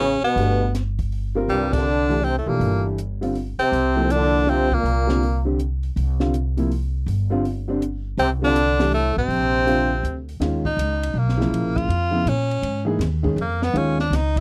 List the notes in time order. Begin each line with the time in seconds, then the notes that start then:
Already playing: A1 C#3 C#4
0.01 open hi-hat
0.23 B2 B3, muted upright bass stroke
0.36 G1 A3 D4 G4 B4, open hi-hat
0.75 snare, closed hi-hat
0.99 kick, open hi-hat
1.12 open hi-hat
1.35 G3 C4 F4 A#4
1.48 C2 G2 G3, open hi-hat
1.73 D3 D4, kick, crash
2.09 E3 A3 D4 G4, open hi-hat
2.23 C3 C4, open hi-hat
2.39 A2 A3
2.46 B1 A#2 E3 A#3 D4 G4 A4
2.60 G1, open hi-hat
2.98 closed hi-hat
3.21 D3 G3 C4 F4, open hi-hat
3.35 open hi-hat
3.59 C3 C4, muted upright bass stroke
3.72 C2, open hi-hat
3.96 F3 A#3 E4 A4
4.10 D3 D4, closed hi-hat
4.47 C3 D3 G3 C4 F4, open hi-hat
4.72 A#2 A#3, kick
4.84 C2, open hi-hat
5.07 D3 G3 C4 F4, snare
5.23 open hi-hat
5.45 D3 G3 C4 G4
5.59 closed hi-hat
5.83 open hi-hat
5.96 C2, open hi-hat
6.20 D3 G3 C4 F4, snare
6.34 closed hi-hat
6.57 C3 F3 A#3 E4, open hi-hat
6.71 open hi-hat
7.06 G1, open hi-hat
7.30 D3 G3 C4 F4
7.45 open hi-hat
7.68 D3 G3 C4 D4
7.82 closed hi-hat
8.18 C2 C3 C4, open hi-hat
8.41 D3 G3 C4 D4 F4
8.56 closed hi-hat
8.79 E3 A3 D4 G4, snare, open hi-hat
8.93 A2 A3, open hi-hat
9.16 A1 C3 C4, kick
9.28 A#1, open hi-hat
9.66 D3 G3 C4 F4, open hi-hat
10.03 D2, closed hi-hat
10.29 open hi-hat
10.40 D#2 D#3 G#3 C#4 F4, snare, ride
10.65 D#4, kick
10.77 C#2, hi-hat pedal, ride
11.03 ride
11.14 B1
11.19 A#3
11.29 snare
11.38 C#3 F3 A#3 E4, snare
11.51 A#1, ride
11.76 F4, kick, ride
11.88 F2, ride
12.11 C#3 F3 B3 E4
12.26 A#2 C#4, hi-hat pedal, ride
12.51 ride
12.62 G#2, ride
12.85 E3 A#3 D#4 G#4
12.99 D#2, snare, hi-hat pedal, ride
13.23 D#3 G#3 C#4 G#4, kick
13.36 F2, ride
13.41 A#3
13.62 B3, snare
13.73 D#2 D#3 G#3 C#4 F4, ride
13.78 C#4
13.99 D4, snare
14.10 C#2, snare, hi-hat pedal, ride
14.16 D#4
14.36 kick, ride